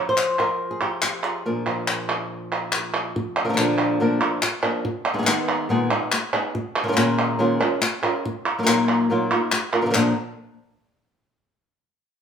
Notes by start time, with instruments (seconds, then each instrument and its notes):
Already playing: nylon-string guitar F3
0.09 nylon-string guitar C5
0.17 clap
0.40 nylon-string guitar A#4
0.71 nylon-string guitar G#4
0.82 nylon-string guitar G4
1.02 nylon-string guitar F4, clap
1.13 nylon-string guitar G4
1.23 nylon-string guitar G#4, clap
1.46 nylon-string guitar A#2 F3 D4 G#4 A#4
1.67 nylon-string guitar F3
1.88 nylon-string guitar G#4, clap
2.72 nylon-string guitar A#4, clap
3.16 muted nylon-string guitar stroke
3.45 nylon-string guitar D3 F3 A#3 D4 A#4
3.49 nylon-string guitar D3 F3 A#3 D4 A#4
3.53 nylon-string guitar D3 F3 A#3 D4 A#4
3.57 nylon-string guitar A#2 D3 F3 A#3 D4 A#4, clap
3.78 clap
4.00 nylon-string guitar A#2 D3 F3 A#3 D4 A#4
4.20 nylon-string guitar F3 A#3 D4 A#4
4.42 muted nylon-string guitar stroke, clap
4.63 nylon-string guitar F3 A#3 D4 A#4
4.85 muted nylon-string guitar stroke
5.14 nylon-string guitar D#3 G#3 B3 D#4 G#4
5.18 nylon-string guitar D#3 G#3 B3 D#4 G#4
5.23 nylon-string guitar D#3 G#3 B3 D#4 G#4
5.27 nylon-string guitar D#3 G#3 B3 D#4 G#4, clap
5.69 nylon-string guitar A#2 D#3 G#3 B3 D#4 G#4
5.91 nylon-string guitar G#3 B3 D#4 G#4
6.12 muted nylon-string guitar stroke, clap
6.33 nylon-string guitar G#3 B3 D#4 G#4
6.55 muted nylon-string guitar stroke
6.83 nylon-string guitar D#3 G#3 C#4 F4 A#4
6.88 nylon-string guitar D#3 G#3 C#4 F4 A#4
6.92 nylon-string guitar D#3 G#3 C#4 F4 A#4
6.96 nylon-string guitar A#2 D#3 G#3 C#4 F4 A#4, clap
7.39 nylon-string guitar A#2 D#3 G#3 C#4 F4 A#4
7.60 nylon-string guitar G#3 C#4 F4 A#4
7.81 muted nylon-string guitar stroke, clap
8.02 nylon-string guitar G#3 C#4 F4 A#4
8.26 muted nylon-string guitar stroke
8.46 clap
8.59 nylon-string guitar F#3 A#3 D#4 F4 A#4
8.63 nylon-string guitar F#3 A#3 D#4 F4 A#4
8.67 nylon-string guitar A#2 F#3 A#3 D#4 F4 A#4, clap
8.88 clap
9.10 nylon-string guitar A#2 F#3 A#3 D#4 F4 A#4
9.32 nylon-string guitar A#3 D#4 F4 A#4
9.52 muted nylon-string guitar stroke, clap
9.73 nylon-string guitar A#3 D#4 F4 A#4, clap
9.81 nylon-string guitar D3 F3 A#3 D4 A#4
9.86 nylon-string guitar D3 F3 A#3 D4 A#4
9.90 nylon-string guitar D3 F3 A#3 D4 A#4, clap
9.95 nylon-string guitar A#2 D3 F3 A#3 D4 A#4